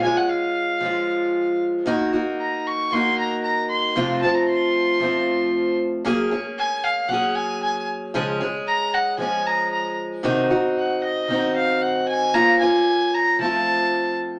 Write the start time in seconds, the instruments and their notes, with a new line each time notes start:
0.02 steel-string acoustic guitar G#3 C#4 F4, fiddle G#5
0.17 fiddle F#5
0.29 fiddle F5
0.80 steel-string acoustic guitar F3 G#3
0.84 steel-string acoustic guitar C#4 F4
1.86 steel-string acoustic guitar D#3 A#3 D#4 F#4
2.13 steel-string acoustic guitar A#3 D#4 F#4
2.40 fiddle A#5
2.67 fiddle C#6
2.91 steel-string acoustic guitar D#3 A#3 D#4, fiddle C6
2.96 steel-string acoustic guitar F#4
3.18 fiddle A#5
3.44 fiddle A#5
3.69 fiddle C6
3.96 steel-string acoustic guitar F2 C3 F3 A3 C4 F4
4.22 steel-string acoustic guitar F3 A3 C4 F4, fiddle A5
4.35 fiddle A#5
4.49 fiddle C6
5.00 steel-string acoustic guitar F3 A3 C4
5.05 steel-string acoustic guitar F4
6.05 steel-string acoustic guitar F#3 A#3 C#4 G#4
6.31 steel-string acoustic guitar A#3 C#4 G#4
6.58 fiddle G#5
6.84 fiddle F5
7.08 steel-string acoustic guitar F#3 A#3 C#4, fiddle F#5
7.13 steel-string acoustic guitar G#4
7.35 fiddle G#5
7.63 fiddle G#5
8.14 steel-string acoustic guitar C#3 F3 G#3 C#4 G#4
8.41 steel-string acoustic guitar G#3 C#4 G#4
8.67 fiddle A#5
8.94 fiddle F#5
9.18 steel-string acoustic guitar F3 G#3 C#4, fiddle G#5
9.23 steel-string acoustic guitar G#4
9.47 fiddle A#5
9.73 fiddle A#5
10.23 steel-string acoustic guitar C3 D#3 C4 D#4 F#4
10.50 steel-string acoustic guitar C4 D#4 F#4
10.78 fiddle F#5
11.04 fiddle D#5
11.28 steel-string acoustic guitar D#3 C4
11.32 steel-string acoustic guitar D#4 F#4
11.56 fiddle F5
11.82 fiddle F#5
12.08 fiddle G#5
12.34 steel-string acoustic guitar F3 A#3 C#4 F4, fiddle A#5
12.59 steel-string acoustic guitar C#4 F4, fiddle G#5
12.64 steel-string acoustic guitar A#3
13.14 fiddle A#5
13.39 steel-string acoustic guitar F3 A3 C4, fiddle A5
13.44 steel-string acoustic guitar F4